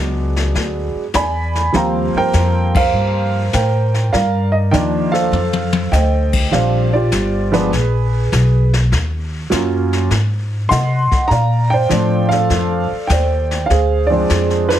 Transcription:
Already playing: upright bass C#2, upright piano F#3 G#3 B3 D4
0.36 snare
0.54 upright bass D2, brush sweep, kick, snare
0.94 muted upright bass stroke
1.14 upright bass E2, upright piano D5 G#5 B5, kick, snare, hi-hat pedal
1.55 snare
1.72 upright bass D#2, upright piano F3 G3 A#3 C4 F5 G5 A#5, brush sweep, kick, snare
2.14 upright piano A#4 C5 G5, muted upright bass stroke
2.33 upright bass F2, kick, snare, hi-hat pedal
2.75 upright piano A#4 C5 F5, kick, crash
2.93 upright bass G2, brush sweep
3.53 upright bass A2, upright piano A#4 C5 G5, kick, snare, hi-hat pedal
3.94 snare
4.13 upright bass G2, upright piano A#4 D5 F5, brush sweep, kick, snare
4.52 upright piano D#5
4.71 upright bass D#2, upright piano D#3 F3 A#3 D4 G5, kick, snare, hi-hat pedal
5.12 upright piano A4 C5 F5, snare
5.31 upright bass F2, high tom
5.53 high tom
5.73 high tom
5.92 upright bass D2, upright piano C5 D#5 G5, snare, hi-hat pedal
6.33 kick, crash
6.51 upright bass A#1, upright piano F3 G3 C4 D4 C5 D5 F5, brush sweep, kick, snare
6.93 upright piano F4 G4 D5
7.12 upright bass G1, kick, snare, hi-hat pedal
7.52 upright piano F3 G#3 B3 D4 G#4 B4, snare
7.72 upright bass A#1, brush sweep, kick, snare
8.32 upright bass B1, kick, snare, hi-hat pedal
8.73 snare
8.92 upright bass D#2, brush sweep, kick, snare
9.50 upright bass F#2, upright piano F#3 A#3 C#4 F4, kick, snare, hi-hat pedal
9.93 snare
10.10 upright bass G#2, brush sweep, kick, snare
10.69 upright bass C3, upright piano D#5 F#5 C6, kick, snare, hi-hat pedal
11.11 muted upright bass stroke, kick, snare
11.28 upright bass A#2, upright piano D5 A#5, brush sweep, kick, snare
11.32 upright piano F5
11.70 upright piano C5 D5 G5
11.89 upright bass A2, upright piano F3 A3 C4 D4, kick, snare, hi-hat pedal
12.29 upright piano D5 F5, snare
12.33 upright piano A4
12.50 upright bass F2, brush sweep, kick, snare
12.91 muted upright bass stroke
13.07 upright bass D#2, upright piano G5, kick, snare, hi-hat pedal
13.12 upright piano C5 D5
13.51 snare
13.66 upright bass D2, upright piano F5, kick
13.70 upright piano G#4 C5, brush sweep, snare
14.07 upright piano F3 G#3 D5
14.11 upright piano C4 D4
14.30 upright bass F2, kick, snare, hi-hat pedal
14.50 snare
14.69 upright piano D4 F4 B4, snare

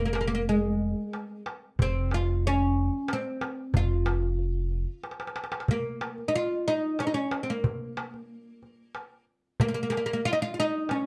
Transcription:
Already playing: upright bass F1
0.06 oud A#3
0.13 oud A#3, darbuka tek
0.21 oud A#3
0.28 oud A#3
0.35 oud A#3
0.49 oud G#3
0.81 darbuka ka
1.13 darbuka tek
1.46 darbuka tek
1.79 upright bass F1, oud C4, darbuka dum
2.11 oud F4, darbuka tek
2.47 oud C#4
2.76 darbuka ka
3.08 darbuka tek
3.13 oud C4
3.41 darbuka tek
3.74 upright bass F1, oud F4, darbuka dum
4.06 darbuka tek
4.22 darbuka ka
4.39 darbuka ka
4.71 darbuka ka
5.04 darbuka tek
5.11 darbuka ka
5.20 darbuka tek
5.27 darbuka ka
5.36 darbuka tek
5.44 darbuka ka
5.52 darbuka tek
5.60 darbuka ka
5.68 oud A#3, darbuka dum
6.01 darbuka tek
6.18 darbuka ka
6.28 oud D#4
6.36 oud F4
6.68 oud D#4
6.99 oud C#4, darbuka tek
7.07 oud D#4
7.14 oud C#4
7.31 darbuka tek
7.43 oud C4
7.50 oud A#3
7.64 darbuka dum
7.97 darbuka tek
8.14 darbuka ka
8.62 darbuka ka
8.95 darbuka tek
9.60 oud A#3, darbuka dum
9.68 oud A#3
9.74 oud A#3
9.83 oud A#3
9.90 oud A#3, darbuka tek
9.97 oud A#3
10.06 oud A#3, darbuka ka
10.13 oud A#3
10.25 oud F4
10.33 oud D#4
10.42 oud F4
10.54 oud F4, darbuka ka
10.60 oud D#4
10.89 oud C#4, darbuka tek

